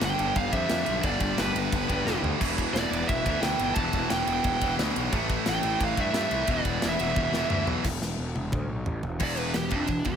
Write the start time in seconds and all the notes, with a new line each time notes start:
Already playing: G2 D3 G3
0.01 G1 G5, snare, ride
0.18 G1 G2 D3 G3, ride
0.36 G1 F5, kick, ride
0.51 F2 G2 D3 G3 E5, kick, ride
0.67 F2 G2 D3 G3, snare, ride
0.86 B1, ride
1.02 G1 G2 D3 G3 D5, kick, ride
1.20 G1, kick, ride
1.38 G1 B4, snare, ride
1.53 G1 D3 G3, ride
1.57 G2
1.72 G1, kick, ride
1.88 G1 G2 D3 G3, kick, ride
2.05 F1 G2 D3 G3, snare
2.22 D2, floor tom
2.39 E1 E2 B2 E3, kick, crash
2.58 kick, ride
2.73 E1 D5, snare, ride
2.91 E1 B2 E3, ride
2.95 E2
3.08 E1 E5, kick, ride
3.25 D2 E2 B2 E3, kick, ride
3.41 D2 E2 B2 E3 G5, snare, ride
3.59 G1, ride
3.74 E1 E2 B2 E3 A5, kick, ride
3.93 E1, kick, ride
4.10 E1 G5, snare, ride
4.25 E1 E2 B2 E3, ride
4.44 E1, kick, ride
4.61 E1 E2 B2 E3, kick, ride
4.78 D2 E2 B2 E3, snare, ride
4.96 B1, ride
5.11 A1 A2 E3 A3, kick, ride
5.29 kick, ride
5.46 A1 G5, snare, ride
5.62 A1 A2 E3 A3, ride
5.80 A1, kick, ride
5.84 F5
5.96 G2 A2 E3 A3, kick, ride
6.00 E5
6.12 G2 A2 E3 A3, snare, ride
6.31 C2, ride
6.47 E1 E2 B2 E3, kick, ride
6.52 D5
6.65 E1, kick, ride
6.82 E1, snare, ride
6.89 E5
6.98 E1 E2 B2 E3, ride
7.16 E1, kick, high tom
7.31 E1 E2 B2 E3, snare
7.48 D2 E2 B2 E3, mid tom
7.67 B1, floor tom
7.84 E1, kick, snare, crash
8.01 E1, snare
8.18 E1
8.35 E1, high tom
8.52 D2, kick, mid tom
8.69 B1
8.86 A1, floor tom
9.03 E1, floor tom
9.20 E1 E2 D5, kick, crash
9.37 B4, ride
9.54 E1 E2 G4, snare, ride
9.69 F1 F2, kick, ride
9.76 D4
9.87 E1 E2, kick, ride
10.05 E1 E2 G4, kick, ride